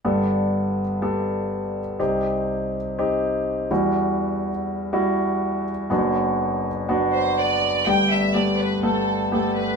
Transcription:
X:1
M:4/4
L:1/8
Q:1/4=123
K:G
V:1 name="Violin section"
z8 | z8 | z8 | z4 z c d2 |
g e d B A2 A B |]
V:2 name="Grand piano"
[B,GA]3 z [B,GA]3 z | [C_EG]3 z [CEG]3 [G,=EF]- | [G,EF]2 z2 [G,EF]3 z | [B,DF]3 z [B,DF]3 z |
[A,B,G]2 [A,B,G]2 [A,B,A]2 [A,B,G]2 |]
V:3 name="Grand piano" clef=bass
[G,,,G,,]8 | [C,,C,]6- [C,,C,] [E,,E,]- | [E,,E,]6- [E,,E,] z | [F,,,F,,]8 |
[G,,,G,,]8 |]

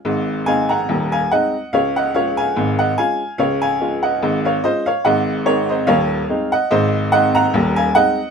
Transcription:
X:1
M:2/4
L:1/16
Q:"Swing 16ths" 1/4=72
K:Db
V:1 name="Upright piano"
[fa]2 [fa] [gb]2 [fa] [eg]2 | [df] [eg] [df] [fa]2 [eg] [fa]2 | [df] [fa]2 [eg]2 [df] [ce] [df] | [eg]2 [Bd] [ce] [df]3 [eg] |
[ce]2 [eg] [gb]2 [fa] [eg]2 |]
V:2 name="Upright piano" clef=bass
[A,,,A,,]2 [A,CE]2 [E,,,E,,]2 [A,CE]2 | [D,,D,]2 [A,DF]2 [A,,,A,,]2 [A,DF]2 | [D,,D,]2 [A,DF]2 [A,,,A,,]2 [A,DF]2 | [A,,,A,,]2 [A,CE]2 [E,,,E,,]2 [A,CE]2 |
[A,,,A,,]2 [A,CE]2 [E,,,E,,]2 [A,CE]2 |]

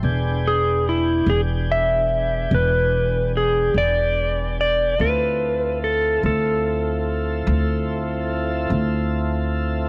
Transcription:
X:1
M:12/8
L:1/8
Q:3/8=48
K:Ephr
V:1 name="Electric slide guitar"
z ^G E G e2 B2 G d2 d | B2 A A6 z3 |]
V:2 name="Tonewheel organ"
[B,D^G=g]12 | [CEFA]12 |]
V:3 name="Upright bass" clef=bass
E,,,3 E,,,3 E,,,3 E,,,3 | D,,3 D,,3 D,,3 D,,3 |]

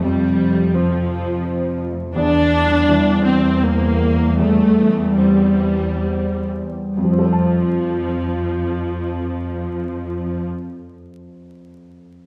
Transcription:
X:1
M:3/4
L:1/8
Q:1/4=71
K:F
V:1 name="Harp"
(3[F,,C,A,FAc] C, A, (3F c A (3c F A, | (3E,, E, G, (3G c G- (3G G G, | (3E,, E, G, (3G c G (3c G G, | [F,,F,A,Fcf]6- |
[F,,F,A,Fcf]6 |]
V:2 name="Viola section" clef=bass
G,2 F,3 z | D3 C B,2 | A,2 G,3 z | F,6- |
F,6 |]
V:3 name="Grand piano" clef=bass
[F,,C,]2 C4 | E,,2 E,4 | E,,2 C4 | [F,,F,CAca]6- |
[F,,F,CAca]6 |]
V:4 name="Cello section" clef=bass
F,,6 | E,,6- | E,,4- E,, z | F,,6- |
F,,6 |]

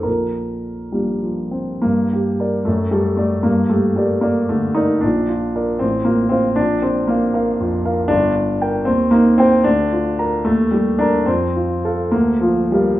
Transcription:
X:1
M:6/8
L:1/8
Q:3/8=75
K:Bb
V:1 name="Grand piano"
B,,,3 [F,B,D]3 | [K:Gm] G,, G [Bd] ^F,, A d | G,, G [Bd] [Bd] D, [Bd] | B,,, F [Bd] A,,, F [cf] |
B,,, D [Bf] [Bf] F,, [Bf] | [K:Bb] G,,, D [Bg] E,, E [cg] | D,, F [Bb] E,, G [Bb] | F,, F [Af] D,, F [Bf] |]
V:2 name="Grand piano"
B3 G, F, C | [K:Gm] B,3 A, G, A, | B, A, G, B, A, E | D3 C B, C |
D C B, z3 | [K:Bb] D3 C B, C | D3 A, G, D | C3 B, F, G, |]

